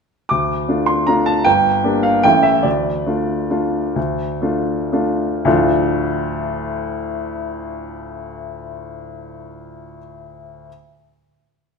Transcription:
0.29 0.68 D2 soft
0.29 0.87 D6 medium
0.68 1.04 A3 soft
0.68 1.04 D4 soft
0.68 1.04 F4 soft
0.86 1.07 C6 medium
1.07 1.42 A3 soft
1.07 1.42 D4 soft
1.07 1.43 F4 soft
1.07 1.27 A#5 medium
1.26 1.45 A5 medium
1.44 1.83 G1 medium
1.44 2.03 G5 medium
1.84 2.20 A#3 soft
1.84 2.20 D4 soft
1.84 2.20 G4 soft
2.03 2.24 F5 medium
2.23 2.64 A1 medium
2.23 2.61 A3 soft
2.23 2.61 C#4 soft
2.23 2.62 E4 soft
2.23 2.44 G5 medium
2.43 2.64 E5 medium
2.63 3.05 D2 soft
2.63 5.18 D5 medium
3.06 3.47 A3 soft
3.06 3.47 D4 soft
3.06 3.47 F4 soft
3.50 3.91 A3 soft
3.50 3.92 D4 soft
3.50 3.92 F4 soft
3.96 4.41 D2 medium
4.42 4.89 A3 soft
4.42 4.89 D4 soft
4.42 4.89 F4 soft
4.92 5.41 A3 soft
4.92 5.41 D4 soft
4.92 5.41 F4 soft
5.45 9.98 D2 medium
5.45 9.98 A2 medium
5.45 9.98 F3 medium
5.45 9.99 A3 medium
5.45 9.99 D4 medium
5.45 9.99 F4 medium

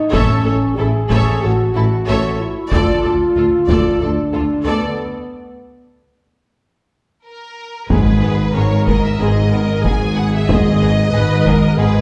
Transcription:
0.00 0.12 D#4 medium
0.13 0.21 A1 medium
0.13 0.26 A1 medium
0.13 0.21 A2 medium
0.13 0.77 C#4 medium
0.13 0.44 A4 medium
0.13 0.43 C#5 medium
0.13 0.44 E5 medium
0.13 taiko medium
0.45 0.58 A1 soft
0.45 0.54 A1 soft
0.45 0.54 A2 medium
0.45 0.54 A4 soft
0.45 0.55 C#5 soft
0.77 0.86 A1 soft
0.77 0.91 A1 soft
0.77 0.87 A2 medium
0.77 0.87 E4 soft
0.77 1.42 G#4 medium
0.77 0.86 A4 medium
0.77 0.87 A4 soft
1.10 1.24 A1 medium
1.10 1.19 A1 medium
1.10 1.19 A2 medium
1.10 1.41 A4 medium
1.10 1.41 C#5 medium
1.10 1.41 E5 medium
1.10 taiko medium
1.43 1.56 A1 soft
1.43 1.51 A1 soft
1.43 1.51 A2 soft
1.43 2.40 F#4 medium
1.43 1.51 A4 soft
1.43 1.52 A4 soft
1.43 1.51 C#5 soft
1.75 1.83 A1 soft
1.75 1.88 A1 medium
1.75 1.83 A2 soft
1.75 1.84 E4 soft
1.75 1.83 A4 medium
1.75 1.84 A4 soft
2.07 2.20 A1 medium
2.07 2.16 A1 medium
2.07 2.15 A2 medium
2.07 2.38 A4 medium
2.07 2.38 C#5 medium
2.07 2.38 E5 medium
2.40 2.72 E4 medium
2.71 2.80 D2 medium
2.71 2.85 D2 medium
2.71 2.81 D2 medium
2.71 4.02 F4 medium
2.71 3.03 A4 medium
2.71 3.02 D5 medium
2.71 3.03 D5 medium
2.71 taiko medium
3.04 3.13 D2 soft
3.04 3.18 D2 soft
3.04 3.13 D2 soft
3.04 3.12 A4 soft
3.04 3.13 A4 soft
3.36 3.45 D2 soft
3.36 3.50 D2 soft
3.36 3.44 F4 soft
3.36 3.45 F4 soft
3.36 3.45 A4 soft
3.69 3.77 D2 medium
3.69 3.82 D2 medium
3.69 4.00 A4 soft
3.69 3.99 D5 medium
3.69 taiko medium
4.00 4.10 D2 soft
4.00 4.15 D2 soft
4.00 4.66 D4 medium
4.00 4.08 A4 soft
4.00 4.09 A4 soft
4.00 4.10 A4 soft
4.34 4.42 D2 soft
4.34 4.43 D2 soft
4.34 4.48 D2 soft
4.34 4.42 F4 soft
4.34 4.42 A4 soft
4.66 4.74 D2 soft
4.66 4.74 D2 medium
4.66 4.80 D2 medium
4.66 5.30 B3 medium
4.66 4.96 A4 medium
4.66 4.96 D5 medium
4.66 4.97 D5 soft
7.26 7.86 A#4 medium
7.90 8.47 G#1 medium
7.90 8.47 G#1 soft
7.90 8.13 G#2 soft
7.90 8.47 G#2 soft
7.90 8.13 G#3 soft
7.90 7.99 B3 soft
7.90 8.13 B3 soft
7.90 8.13 D#4 soft
7.90 8.51 G#4 medium
7.90 7.99 G#4 soft
7.90 8.55 B4 medium
7.90 taiko medium
8.22 8.30 B3 soft
8.22 8.30 G#4 soft
8.54 9.12 G#1 soft
8.54 9.12 G#2 soft
8.54 8.63 B3 soft
8.54 8.63 G#4 soft
8.54 9.20 A#4 medium
8.54 8.88 C#5 medium
8.87 8.95 B3 soft
8.87 8.95 G#4 soft
8.87 9.04 D#5 medium
8.87 taiko medium
9.05 9.21 E5 medium
9.19 9.77 G#1 soft
9.19 9.77 G#2 soft
9.19 9.43 G#2 soft
9.19 9.43 G#3 soft
9.19 9.27 B3 soft
9.19 9.42 B3 soft
9.19 9.42 D#4 medium
9.19 9.27 G#4 soft
9.19 9.52 G#4 soft
9.19 9.85 D#5 medium
9.52 9.60 B3 soft
9.52 9.60 G#4 soft
9.52 9.84 A#4 medium
9.84 10.41 G#1 soft
9.84 10.42 G#1 medium
9.84 10.41 G#2 soft
9.84 9.92 B3 soft
9.84 9.92 G#4 soft
9.84 11.13 G#4 medium
9.84 10.17 G#5 medium
9.84 taiko medium
10.15 10.23 B3 soft
10.15 10.23 G#4 soft
10.15 10.33 F#5 medium
10.35 10.50 E5 medium
10.48 11.06 G#1 medium
10.48 10.71 G#2 medium
10.48 11.06 G#2 medium
10.48 10.71 G#3 medium
10.48 10.57 B3 soft
10.48 10.72 B3 soft
10.48 10.72 D#4 soft
10.48 10.56 G#4 soft
10.48 11.79 D#5 medium
10.48 taiko medium
10.81 10.89 B3 soft
10.81 10.89 G#4 soft
11.12 11.71 G#1 medium
11.12 11.71 G#2 medium
11.12 11.21 B3 soft
11.12 11.20 G#4 soft
11.12 11.45 B4 medium
11.45 11.53 B3 soft
11.45 11.54 G#4 soft
11.45 11.78 A#4 medium
11.45 taiko medium
11.76 12.01 G#1 medium
11.76 12.00 G#2 medium
11.76 12.01 G#2 medium
11.76 12.00 G#3 medium
11.76 11.86 B3 soft
11.76 12.01 B3 medium
11.76 12.01 D#4 medium
11.76 11.86 G#4 medium
11.76 12.01 G#4 medium
11.76 12.01 B4 medium

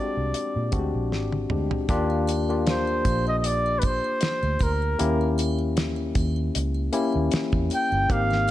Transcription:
0.00 0.72 G#3 medium
0.00 0.72 C4 medium
0.00 0.73 D4 medium
0.00 0.73 F#4 medium
0.00 0.02 G4 medium
0.00 0.65 G4 medium
0.00 1.51 D5 medium
0.17 0.32 C2 medium
0.34 closed hi-hat medium
0.56 0.71 A#2 medium
0.72 0.91 D2 medium
0.72 1.38 G#3 medium
0.72 1.39 C4 medium
0.72 1.39 D4 medium
0.72 0.80 F#4 medium
0.72 kick medium
0.72 closed hi-hat medium
0.79 1.42 G4 medium
0.94 1.12 A#1 medium
1.12 1.45 G#1 medium
1.12 snare medium
1.32 high tom medium
1.50 1.68 D2 medium
1.50 1.84 G#3 medium
1.50 1.84 C4 medium
1.50 1.84 D4 medium
1.50 1.84 G4 medium
1.50 mid tom medium
1.71 floor tom medium
1.89 3.02 D#2 loud
1.89 2.39 A#3 loud
1.89 2.39 D4 loud
1.89 2.39 F4 loud
1.89 2.39 G4 loud
1.89 kick loud
1.89 closed hi-hat loud
1.89 muted triangle soft
2.10 muted triangle soft
2.27 closed hi-hat medium
2.27 triangle medium
2.49 3.78 A#3 medium
2.49 3.78 D4 medium
2.49 3.79 F4 medium
2.49 3.79 G4 medium
2.49 muted triangle medium
2.67 3.24 C5 medium
2.67 snare loud
2.67 closed hi-hat medium
2.67 muted triangle soft
2.87 muted triangle medium
3.05 4.00 A#1 loud
3.05 kick medium
3.05 closed hi-hat medium
3.05 triangle medium
3.27 3.39 D#5 loud
3.27 muted triangle medium
3.39 3.48 D#5 medium
3.44 3.81 D5 loud
3.44 closed hi-hat loud
3.44 muted triangle soft
3.66 muted triangle soft
3.79 3.87 B4 medium
3.79 closed hi-hat medium
3.83 4.65 C5 loud
3.83 kick loud
3.83 triangle medium
4.04 muted triangle soft
4.21 snare loud
4.21 closed hi-hat medium
4.21 muted triangle soft
4.43 4.58 D2 medium
4.43 muted triangle soft
4.59 4.94 D2 medium
4.59 5.40 A#4 medium
4.59 kick medium
4.59 closed hi-hat medium
4.59 triangle medium
4.82 muted triangle soft
4.99 6.13 D#2 loud
4.99 6.31 A#3 loud
4.99 6.31 C#4 medium
4.99 6.31 E4 medium
4.99 6.31 G4 loud
4.99 closed hi-hat loud
4.99 muted triangle soft
5.21 muted triangle medium
5.38 closed hi-hat medium
5.38 triangle medium
5.59 muted triangle medium
5.76 snare loud
5.76 closed hi-hat medium
5.76 muted triangle soft
5.96 muted triangle medium
6.15 6.49 D#2 medium
6.15 kick medium
6.15 closed hi-hat medium
6.15 triangle medium
6.36 muted triangle soft
6.55 6.88 C#2 medium
6.55 closed hi-hat loud
6.55 muted triangle soft
6.74 muted triangle soft
6.92 7.92 A#3 medium
6.92 7.92 C#4 medium
6.92 7.93 E4 medium
6.92 7.93 G4 loud
6.92 closed hi-hat medium
6.92 triangle medium
7.12 7.30 D#2 medium
7.12 muted triangle soft
7.31 muted fingered electric bass stroke soft
7.31 snare loud
7.31 closed hi-hat medium
7.31 muted triangle soft
7.52 7.68 E2 loud
7.52 kick loud
7.52 muted triangle soft
7.70 closed hi-hat medium
7.70 triangle medium
7.74 8.14 G5 loud
7.92 8.07 G1 loud
7.92 muted triangle soft
8.10 8.51 G#1 loud
8.10 8.51 A#3 medium
8.10 8.51 C4 medium
8.10 8.51 D#4 medium
8.10 8.51 G4 loud
8.10 8.51 F5 loud
8.10 kick loud
8.10 closed hi-hat loud
8.10 muted triangle soft
8.31 snare soft
8.31 muted triangle medium
8.48 triangle medium

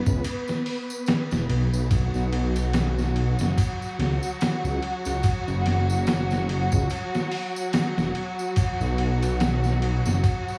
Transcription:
0.00 1.92 B3 medium
0.00 1.92 B4 medium
0.06 0.22 C#2 loud
0.06 kick loud
0.06 tambourine medium
0.24 ride medium
0.24 tambourine medium
0.48 snare soft
0.48 tambourine soft
0.66 open hi-hat medium
0.90 tambourine medium
1.06 snare loud
1.06 ride medium
1.06 tambourine medium
1.31 1.47 E1 loud
1.31 snare medium
1.31 tambourine soft
1.49 1.70 B1 medium
1.49 ride medium
1.72 2.08 B1 medium
1.72 tambourine medium
1.91 10.58 F#3 medium
1.91 10.58 F#4 medium
1.91 kick loud
1.91 ride medium
1.91 tambourine medium
2.14 2.30 B1 medium
2.14 tambourine soft
2.32 3.35 B1 loud
2.32 ride medium
2.56 ride soft
2.56 tambourine medium
2.73 snare loud
2.73 ride medium
2.73 tambourine medium
2.99 snare soft
2.99 tambourine soft
3.16 ride medium
3.39 3.55 F#1 loud
3.39 snare medium
3.39 tambourine medium
3.58 kick loud
3.58 ride medium
3.58 tambourine medium
3.82 tambourine soft
3.98 4.20 C#2 medium
3.98 snare medium
3.98 ride medium
4.23 tambourine medium
4.41 snare loud
4.41 ride medium
4.41 tambourine medium
4.64 4.80 C#2 medium
4.64 tambourine soft
4.83 ride medium
5.05 5.22 C#2 medium
5.05 ride soft
5.05 tambourine medium
5.23 kick loud
5.23 ride loud
5.23 tambourine medium
5.47 5.63 F#1 loud
5.47 tambourine soft
5.65 6.68 F#1 medium
5.65 snare medium
5.65 ride medium
5.90 tambourine medium
6.07 snare loud
6.07 ride medium
6.07 tambourine medium
6.31 snare medium
6.31 tambourine soft
6.49 ride medium
6.72 6.88 C#2 loud
6.72 kick medium
6.72 tambourine medium
6.90 ride medium
6.90 tambourine medium
7.14 snare soft
7.14 tambourine soft
7.31 open hi-hat medium
7.56 tambourine medium
7.73 snare loud
7.73 ride medium
7.73 tambourine medium
7.97 8.13 E1 medium
7.97 snare medium
7.97 tambourine soft
8.15 ride medium
8.39 tambourine medium
8.56 kick loud
8.56 ride medium
8.56 tambourine medium
8.80 8.96 B1 loud
8.80 tambourine soft
8.98 10.01 B1 medium
8.98 ride medium
9.22 ride soft
9.22 tambourine medium
9.40 snare loud
9.40 ride medium
9.40 tambourine medium
9.64 snare soft
9.64 tambourine soft
9.82 ride medium
10.05 10.21 F#1 loud
10.05 snare medium
10.05 tambourine medium
10.24 kick loud
10.24 ride medium
10.24 tambourine medium
10.48 tambourine soft

